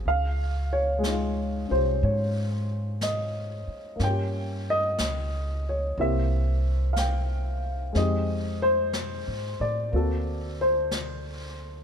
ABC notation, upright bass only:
X:1
M:4/4
L:1/8
Q:"Swing" 1/4=61
K:Dblyd
V:1 name="Upright bass" clef=bass
D,,3 C,, A,,3 z | G,,2 D,,2 C,,4 | F,,2- (3F,, A,, =A,, =D,,4 |]